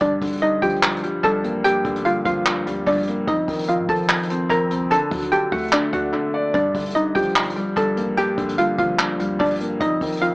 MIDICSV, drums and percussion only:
0, 0, Header, 1, 2, 480
1, 0, Start_track
1, 0, Key_signature, -2, "minor"
1, 0, Tempo, 408163
1, 13, Time_signature, 4, 2, 24, 8
1, 12167, End_track
2, 0, Start_track
2, 0, Title_t, "Drums"
2, 13, Note_on_c, 9, 36, 112
2, 13, Note_on_c, 9, 42, 88
2, 131, Note_off_c, 9, 36, 0
2, 131, Note_off_c, 9, 42, 0
2, 253, Note_on_c, 9, 42, 53
2, 254, Note_on_c, 9, 36, 91
2, 255, Note_on_c, 9, 46, 95
2, 318, Note_off_c, 9, 42, 0
2, 318, Note_on_c, 9, 42, 66
2, 372, Note_off_c, 9, 36, 0
2, 372, Note_off_c, 9, 46, 0
2, 381, Note_off_c, 9, 42, 0
2, 381, Note_on_c, 9, 42, 76
2, 437, Note_off_c, 9, 42, 0
2, 437, Note_on_c, 9, 42, 86
2, 492, Note_off_c, 9, 42, 0
2, 492, Note_on_c, 9, 42, 66
2, 610, Note_off_c, 9, 42, 0
2, 733, Note_on_c, 9, 36, 98
2, 734, Note_on_c, 9, 42, 73
2, 814, Note_off_c, 9, 42, 0
2, 814, Note_on_c, 9, 42, 56
2, 851, Note_off_c, 9, 36, 0
2, 895, Note_off_c, 9, 42, 0
2, 895, Note_on_c, 9, 42, 43
2, 974, Note_on_c, 9, 39, 116
2, 975, Note_off_c, 9, 42, 0
2, 975, Note_on_c, 9, 42, 67
2, 1055, Note_off_c, 9, 42, 0
2, 1055, Note_on_c, 9, 42, 68
2, 1092, Note_off_c, 9, 39, 0
2, 1134, Note_off_c, 9, 42, 0
2, 1134, Note_on_c, 9, 42, 65
2, 1214, Note_off_c, 9, 42, 0
2, 1214, Note_on_c, 9, 42, 79
2, 1332, Note_off_c, 9, 42, 0
2, 1454, Note_on_c, 9, 42, 72
2, 1572, Note_off_c, 9, 42, 0
2, 1694, Note_on_c, 9, 42, 81
2, 1812, Note_off_c, 9, 42, 0
2, 1933, Note_on_c, 9, 42, 91
2, 2051, Note_off_c, 9, 42, 0
2, 2174, Note_on_c, 9, 36, 90
2, 2174, Note_on_c, 9, 42, 74
2, 2292, Note_off_c, 9, 36, 0
2, 2292, Note_off_c, 9, 42, 0
2, 2302, Note_on_c, 9, 42, 74
2, 2413, Note_off_c, 9, 42, 0
2, 2413, Note_on_c, 9, 42, 69
2, 2531, Note_off_c, 9, 42, 0
2, 2654, Note_on_c, 9, 36, 93
2, 2654, Note_on_c, 9, 42, 70
2, 2771, Note_off_c, 9, 36, 0
2, 2772, Note_off_c, 9, 42, 0
2, 2893, Note_on_c, 9, 42, 75
2, 2894, Note_on_c, 9, 39, 115
2, 3010, Note_off_c, 9, 42, 0
2, 3012, Note_off_c, 9, 39, 0
2, 3135, Note_on_c, 9, 42, 80
2, 3253, Note_off_c, 9, 42, 0
2, 3374, Note_on_c, 9, 36, 91
2, 3374, Note_on_c, 9, 42, 61
2, 3437, Note_off_c, 9, 42, 0
2, 3437, Note_on_c, 9, 42, 63
2, 3491, Note_off_c, 9, 36, 0
2, 3501, Note_off_c, 9, 42, 0
2, 3501, Note_on_c, 9, 42, 61
2, 3557, Note_off_c, 9, 42, 0
2, 3557, Note_on_c, 9, 42, 61
2, 3613, Note_off_c, 9, 42, 0
2, 3613, Note_on_c, 9, 42, 72
2, 3730, Note_off_c, 9, 42, 0
2, 3852, Note_on_c, 9, 42, 91
2, 3853, Note_on_c, 9, 36, 114
2, 3969, Note_off_c, 9, 42, 0
2, 3971, Note_off_c, 9, 36, 0
2, 4093, Note_on_c, 9, 42, 55
2, 4094, Note_on_c, 9, 36, 93
2, 4094, Note_on_c, 9, 46, 94
2, 4156, Note_off_c, 9, 42, 0
2, 4156, Note_on_c, 9, 42, 66
2, 4211, Note_off_c, 9, 36, 0
2, 4212, Note_off_c, 9, 46, 0
2, 4219, Note_off_c, 9, 42, 0
2, 4219, Note_on_c, 9, 42, 78
2, 4276, Note_off_c, 9, 42, 0
2, 4276, Note_on_c, 9, 42, 89
2, 4331, Note_off_c, 9, 42, 0
2, 4331, Note_on_c, 9, 42, 69
2, 4449, Note_off_c, 9, 42, 0
2, 4573, Note_on_c, 9, 36, 96
2, 4573, Note_on_c, 9, 42, 72
2, 4653, Note_off_c, 9, 42, 0
2, 4653, Note_on_c, 9, 42, 56
2, 4691, Note_off_c, 9, 36, 0
2, 4733, Note_off_c, 9, 42, 0
2, 4733, Note_on_c, 9, 42, 42
2, 4812, Note_off_c, 9, 42, 0
2, 4812, Note_on_c, 9, 39, 116
2, 4812, Note_on_c, 9, 42, 67
2, 4893, Note_off_c, 9, 42, 0
2, 4893, Note_on_c, 9, 42, 68
2, 4929, Note_off_c, 9, 39, 0
2, 4973, Note_off_c, 9, 42, 0
2, 4973, Note_on_c, 9, 42, 69
2, 5053, Note_off_c, 9, 42, 0
2, 5053, Note_on_c, 9, 42, 82
2, 5171, Note_off_c, 9, 42, 0
2, 5294, Note_on_c, 9, 42, 73
2, 5411, Note_off_c, 9, 42, 0
2, 5533, Note_on_c, 9, 42, 83
2, 5650, Note_off_c, 9, 42, 0
2, 5773, Note_on_c, 9, 42, 91
2, 5890, Note_off_c, 9, 42, 0
2, 6013, Note_on_c, 9, 42, 73
2, 6014, Note_on_c, 9, 36, 93
2, 6015, Note_on_c, 9, 46, 95
2, 6131, Note_off_c, 9, 42, 0
2, 6132, Note_off_c, 9, 36, 0
2, 6132, Note_off_c, 9, 46, 0
2, 6141, Note_on_c, 9, 42, 70
2, 6252, Note_off_c, 9, 42, 0
2, 6252, Note_on_c, 9, 42, 66
2, 6370, Note_off_c, 9, 42, 0
2, 6493, Note_on_c, 9, 42, 59
2, 6494, Note_on_c, 9, 36, 95
2, 6557, Note_off_c, 9, 42, 0
2, 6557, Note_on_c, 9, 42, 59
2, 6611, Note_off_c, 9, 36, 0
2, 6621, Note_off_c, 9, 42, 0
2, 6621, Note_on_c, 9, 42, 61
2, 6677, Note_off_c, 9, 42, 0
2, 6677, Note_on_c, 9, 42, 60
2, 6732, Note_on_c, 9, 39, 114
2, 6795, Note_off_c, 9, 42, 0
2, 6850, Note_off_c, 9, 39, 0
2, 6973, Note_on_c, 9, 36, 86
2, 6973, Note_on_c, 9, 42, 80
2, 7090, Note_off_c, 9, 36, 0
2, 7091, Note_off_c, 9, 42, 0
2, 7692, Note_on_c, 9, 42, 87
2, 7694, Note_on_c, 9, 36, 116
2, 7810, Note_off_c, 9, 42, 0
2, 7811, Note_off_c, 9, 36, 0
2, 7933, Note_on_c, 9, 42, 54
2, 7934, Note_on_c, 9, 36, 92
2, 7934, Note_on_c, 9, 46, 94
2, 7997, Note_off_c, 9, 42, 0
2, 7997, Note_on_c, 9, 42, 68
2, 8052, Note_off_c, 9, 36, 0
2, 8052, Note_off_c, 9, 46, 0
2, 8061, Note_off_c, 9, 42, 0
2, 8061, Note_on_c, 9, 42, 79
2, 8117, Note_off_c, 9, 42, 0
2, 8117, Note_on_c, 9, 42, 89
2, 8173, Note_off_c, 9, 42, 0
2, 8173, Note_on_c, 9, 42, 66
2, 8290, Note_off_c, 9, 42, 0
2, 8413, Note_on_c, 9, 36, 98
2, 8414, Note_on_c, 9, 42, 72
2, 8493, Note_off_c, 9, 42, 0
2, 8493, Note_on_c, 9, 42, 57
2, 8531, Note_off_c, 9, 36, 0
2, 8574, Note_off_c, 9, 42, 0
2, 8574, Note_on_c, 9, 42, 45
2, 8653, Note_on_c, 9, 39, 120
2, 8692, Note_off_c, 9, 42, 0
2, 8734, Note_on_c, 9, 42, 68
2, 8771, Note_off_c, 9, 39, 0
2, 8814, Note_off_c, 9, 42, 0
2, 8814, Note_on_c, 9, 42, 69
2, 8894, Note_off_c, 9, 42, 0
2, 8894, Note_on_c, 9, 42, 80
2, 9012, Note_off_c, 9, 42, 0
2, 9134, Note_on_c, 9, 42, 75
2, 9252, Note_off_c, 9, 42, 0
2, 9372, Note_on_c, 9, 42, 81
2, 9490, Note_off_c, 9, 42, 0
2, 9613, Note_on_c, 9, 42, 89
2, 9730, Note_off_c, 9, 42, 0
2, 9853, Note_on_c, 9, 42, 72
2, 9854, Note_on_c, 9, 36, 90
2, 9971, Note_off_c, 9, 42, 0
2, 9972, Note_off_c, 9, 36, 0
2, 9980, Note_on_c, 9, 42, 73
2, 10092, Note_off_c, 9, 42, 0
2, 10092, Note_on_c, 9, 42, 67
2, 10209, Note_off_c, 9, 42, 0
2, 10333, Note_on_c, 9, 36, 96
2, 10333, Note_on_c, 9, 42, 69
2, 10450, Note_off_c, 9, 36, 0
2, 10450, Note_off_c, 9, 42, 0
2, 10571, Note_on_c, 9, 42, 82
2, 10572, Note_on_c, 9, 39, 118
2, 10689, Note_off_c, 9, 42, 0
2, 10690, Note_off_c, 9, 39, 0
2, 10814, Note_on_c, 9, 42, 79
2, 10932, Note_off_c, 9, 42, 0
2, 11053, Note_on_c, 9, 36, 90
2, 11054, Note_on_c, 9, 42, 62
2, 11116, Note_off_c, 9, 42, 0
2, 11116, Note_on_c, 9, 42, 61
2, 11171, Note_off_c, 9, 36, 0
2, 11179, Note_off_c, 9, 42, 0
2, 11179, Note_on_c, 9, 42, 61
2, 11236, Note_off_c, 9, 42, 0
2, 11236, Note_on_c, 9, 42, 63
2, 11292, Note_off_c, 9, 42, 0
2, 11292, Note_on_c, 9, 42, 75
2, 11410, Note_off_c, 9, 42, 0
2, 11532, Note_on_c, 9, 42, 94
2, 11533, Note_on_c, 9, 36, 115
2, 11650, Note_off_c, 9, 42, 0
2, 11651, Note_off_c, 9, 36, 0
2, 11773, Note_on_c, 9, 42, 54
2, 11774, Note_on_c, 9, 36, 94
2, 11775, Note_on_c, 9, 46, 95
2, 11837, Note_off_c, 9, 42, 0
2, 11837, Note_on_c, 9, 42, 67
2, 11892, Note_off_c, 9, 36, 0
2, 11893, Note_off_c, 9, 46, 0
2, 11901, Note_off_c, 9, 42, 0
2, 11901, Note_on_c, 9, 42, 77
2, 11958, Note_off_c, 9, 42, 0
2, 11958, Note_on_c, 9, 42, 91
2, 12013, Note_off_c, 9, 42, 0
2, 12013, Note_on_c, 9, 42, 66
2, 12130, Note_off_c, 9, 42, 0
2, 12167, End_track
0, 0, End_of_file